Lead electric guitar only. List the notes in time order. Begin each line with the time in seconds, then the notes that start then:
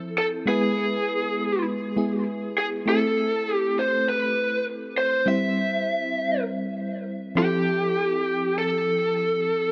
0.18 A4
0.48 G#4
2.58 G#4
2.89 A4
3.55 G4
3.79 C5
4.09 B4
4.98 C5
5.28 E5
7.38 G4
8.58 A4